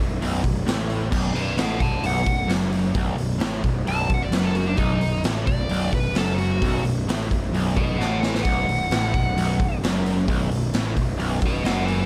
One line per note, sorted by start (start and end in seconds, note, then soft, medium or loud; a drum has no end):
0.00 0.20 B0 medium
0.00 0.17 B1 medium
0.21 0.43 B0 medium
0.21 0.42 B1 medium
0.21 open hi-hat medium
0.44 0.65 B0 medium
0.44 0.62 B1 medium
0.44 kick medium
0.44 open hi-hat medium
0.66 1.09 A1 loud
0.66 1.10 A2 medium
0.66 snare loud
0.66 open hi-hat medium
0.90 open hi-hat soft
1.11 1.33 B0 medium
1.11 1.33 B1 loud
1.11 kick loud
1.11 crash loud
1.35 1.57 B0 medium
1.35 1.53 B1 medium
1.35 1.58 B4 medium
1.35 1.57 D5 medium
1.35 open hi-hat medium
1.57 1.79 A1 medium
1.57 1.79 A2 medium
1.57 1.79 D#5 medium
1.57 1.80 F#5 medium
1.57 snare loud
1.57 open hi-hat medium
1.79 2.02 B0 medium
1.79 1.98 B1 medium
1.79 2.02 F#5 medium
1.79 2.04 A5 medium
1.79 kick medium
1.79 open hi-hat medium
2.03 2.25 B0 medium
2.03 2.23 B1 medium
2.03 2.49 F#5 medium
2.03 open hi-hat medium
2.25 2.48 B0 medium
2.25 2.44 B1 medium
2.25 kick medium
2.25 open hi-hat medium
2.47 2.92 F#1 medium
2.47 2.94 F#2 loud
2.47 snare loud
2.47 open hi-hat medium
2.72 open hi-hat medium
2.94 3.17 B0 medium
2.94 3.16 B1 loud
2.94 kick loud
2.94 open hi-hat medium
3.17 3.39 B0 medium
3.17 3.36 B1 medium
3.17 open hi-hat medium
3.39 3.62 A1 medium
3.39 3.62 A2 medium
3.39 snare loud
3.39 open hi-hat medium
3.63 3.85 B0 medium
3.63 3.82 B1 medium
3.63 kick medium
3.63 open hi-hat medium
3.86 4.08 B0 medium
3.86 4.08 B1 medium
3.86 4.10 A5 medium
3.86 open hi-hat medium
4.09 4.30 B0 medium
4.09 4.28 B1 medium
4.09 kick medium
4.09 open hi-hat soft
4.14 4.23 F#5 medium
4.22 4.33 D5 medium
4.31 4.74 F#1 loud
4.31 4.77 F#2 loud
4.31 snare loud
4.31 open hi-hat medium
4.36 4.45 B4 medium
4.45 4.56 A4 medium
4.55 4.67 F#4 medium
4.55 open hi-hat soft
4.66 4.77 D4 medium
4.77 5.00 B0 medium
4.77 5.00 B1 loud
4.77 5.22 D#4 medium
4.77 kick medium
4.77 open hi-hat medium
5.01 5.22 B0 medium
5.01 5.20 B1 medium
5.01 open hi-hat soft
5.23 5.45 A1 medium
5.23 5.47 A2 medium
5.23 snare loud
5.23 open hi-hat medium
5.47 5.68 B0 medium
5.47 5.66 B1 medium
5.47 5.91 D5 loud
5.47 kick medium
5.47 open hi-hat medium
5.69 5.91 B0 medium
5.69 5.91 B1 loud
5.69 open hi-hat medium
5.92 6.14 B0 medium
5.92 6.11 B1 medium
5.92 6.16 B4 medium
5.92 kick medium
5.92 open hi-hat medium
6.14 6.58 F#1 loud
6.14 6.60 F#2 medium
6.14 6.37 A4 medium
6.14 snare loud
6.14 open hi-hat medium
6.38 6.83 F#4 medium
6.38 open hi-hat medium
6.61 6.83 B0 medium
6.61 6.84 B1 loud
6.61 kick medium
6.61 open hi-hat medium
6.84 7.05 B0 medium
6.84 7.03 B1 medium
6.84 open hi-hat medium
7.07 7.29 A1 medium
7.07 7.30 A2 loud
7.07 snare loud
7.07 open hi-hat medium
7.31 7.52 B0 medium
7.31 7.49 B1 medium
7.31 kick medium
7.31 open hi-hat medium
7.52 7.74 B0 medium
7.52 7.76 B1 medium
7.52 open hi-hat medium
7.76 7.98 B0 medium
7.76 7.95 B1 medium
7.76 7.99 B4 medium
7.76 7.97 D#5 medium
7.76 kick medium
7.76 open hi-hat medium
7.98 8.42 A1 medium
7.98 8.44 A2 medium
7.98 8.20 D#5 medium
7.98 8.21 F#5 medium
7.98 snare medium
8.23 8.44 B4 medium
8.23 8.43 G#5 medium
8.23 snare medium
8.35 snare medium
8.43 8.66 B0 medium
8.43 8.67 B1 loud
8.43 9.77 F#5 medium
8.43 kick medium
8.43 open hi-hat medium
8.68 8.89 B0 medium
8.68 8.86 B1 medium
8.68 open hi-hat soft
8.90 9.12 A1 medium
8.90 9.13 A2 medium
8.90 snare loud
8.90 open hi-hat medium
9.14 9.35 B0 medium
9.14 9.32 B1 medium
9.14 kick medium
9.14 open hi-hat soft
9.37 9.59 B0 medium
9.37 9.59 B1 loud
9.37 open hi-hat medium
9.59 9.81 B0 medium
9.59 9.78 B1 medium
9.59 kick medium
9.59 open hi-hat medium
9.83 10.25 F#1 medium
9.83 10.27 F#2 loud
9.83 snare loud
9.83 open hi-hat medium
10.06 open hi-hat medium
10.28 10.49 B0 medium
10.28 10.50 B1 loud
10.28 kick loud
10.28 open hi-hat medium
10.51 10.73 B0 medium
10.51 10.69 B1 medium
10.51 open hi-hat medium
10.74 10.95 A1 medium
10.74 10.96 A2 loud
10.74 snare loud
10.74 open hi-hat medium
10.96 11.18 B0 medium
10.96 11.15 B1 medium
10.96 kick medium
10.96 open hi-hat medium
11.18 11.41 B0 loud
11.18 11.41 B1 medium
11.18 open hi-hat medium
11.42 11.63 B0 medium
11.42 11.60 B1 medium
11.42 11.65 B4 medium
11.42 kick medium
11.42 open hi-hat medium
11.46 11.64 D#5 medium
11.64 12.06 F#1 medium
11.64 12.06 F#2 loud
11.64 11.86 D#5 medium
11.64 11.86 F#5 medium
11.64 snare loud
11.64 open hi-hat medium
11.86 12.06 B4 medium
11.86 12.06 G#5 loud
11.86 open hi-hat medium